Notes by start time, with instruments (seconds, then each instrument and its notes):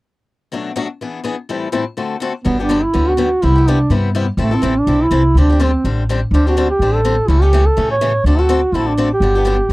0.52 steel-string acoustic guitar B2 F#3 A3 D4 F#4
0.76 steel-string acoustic guitar B2 F#3 A3 D4 F#4
1.01 steel-string acoustic guitar E3 B3 D4 G#4
1.24 steel-string acoustic guitar E3 B3 D4 G#4
1.49 steel-string acoustic guitar A2 E3 G3 C4 E4 A4
1.72 steel-string acoustic guitar A2 E3 G3 C4 E4 A4
1.97 steel-string acoustic guitar D3 A3 C4 F#4 A4
2.20 steel-string acoustic guitar D3 A3 C4 F#4 A4
2.44 upright bass G1, steel-string acoustic guitar D3 F#3 B3 D4 G4, duduk B3
2.60 steel-string acoustic guitar B3 D4 G4, duduk D4
2.69 steel-string acoustic guitar D3 F#3 B3 D4 G4
2.84 duduk E4
2.94 upright bass D2, steel-string acoustic guitar D3 F#3 B3 D4 G4
3.09 duduk F#4
3.17 steel-string acoustic guitar D3 F#3 B3 D4 G4
3.42 upright bass C2, steel-string acoustic guitar C3 G3 B3 E4 G4, duduk E4
3.56 steel-string acoustic guitar B3 E4 G4
3.68 steel-string acoustic guitar C3 G3 B3 E4 G4, duduk D4
3.90 upright bass G2, steel-string acoustic guitar C3 G3 B3 E4 G4
4.15 steel-string acoustic guitar C3 G3 B3 E4 G4
4.37 upright bass A1, steel-string acoustic guitar E3 G3 C4 E4 A4
4.42 duduk A3
4.51 steel-string acoustic guitar C4 E4 A4
4.55 duduk C4
4.62 upright bass A1, steel-string acoustic guitar E3 G3 C4 E4 A4
4.80 duduk D4
4.87 upright bass B1, steel-string acoustic guitar E3 G3 C4 E4 A4
5.04 duduk E4
5.11 upright bass C2, steel-string acoustic guitar E3 G3 C4 E4 A4
5.35 upright bass D2, steel-string acoustic guitar D3 G3 C4 D4 G4
5.39 duduk D4
5.50 steel-string acoustic guitar C4 D4 G4
5.60 steel-string acoustic guitar D3 G3 C4 D4 G4
5.64 duduk C4
5.84 upright bass A1, steel-string acoustic guitar D3 G3 C4 D4 G4
6.09 steel-string acoustic guitar D3 G3 C4 D4 G4
6.31 upright bass D2, steel-string acoustic guitar D3 G3 C4 D4 G4, duduk D4
6.47 steel-string acoustic guitar C4 D4 G4, duduk F#4
6.57 steel-string acoustic guitar D3 G3 C4 D4 G4
6.70 duduk G4
6.79 upright bass A1, steel-string acoustic guitar D3 G3 C4 D4 G4
6.95 duduk A4
7.05 steel-string acoustic guitar D3 G3 C4 D4 G4
7.28 upright bass C#2, steel-string acoustic guitar C#3 E3 A3 C#4 G4, duduk E4
7.42 steel-string acoustic guitar A3 C#4 G4, duduk G4
7.53 steel-string acoustic guitar C#3 E3 A3 C#4 G4
7.66 duduk A4
7.77 upright bass A2, steel-string acoustic guitar C#3 E3 A3 C#4 G4
7.92 duduk C#5
8.01 steel-string acoustic guitar C#3 E3 A3 C#4 G4
8.24 upright bass D2, steel-string acoustic guitar D3 A3 C4 F#4 A4, duduk D4
8.38 steel-string acoustic guitar C4 F#4 A4, duduk F#4
8.49 steel-string acoustic guitar D3 A3 C4 F#4 A4
8.72 upright bass A1, steel-string acoustic guitar D3 A3 C4 F#4 A4, duduk E4
8.88 duduk D4
8.97 steel-string acoustic guitar D3 A3 C4 F#4 A4
9.13 duduk G4
9.20 upright bass G1, steel-string acoustic guitar D3 F#3 B3 D4 G4
9.35 steel-string acoustic guitar B3 D4 G4
9.45 steel-string acoustic guitar D3 F#3 B3 D4 G4
9.69 upright bass D2, steel-string acoustic guitar D3